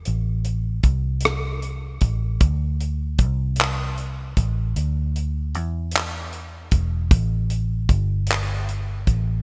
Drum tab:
HH |xxxxxx|xxxxxx|xxxxxx|xxxxxx|
CP |------|---x--|---x--|---x--|
SD |---r--|------|------|------|
BD |--o--o|o-o--o|-----o|o-o--o|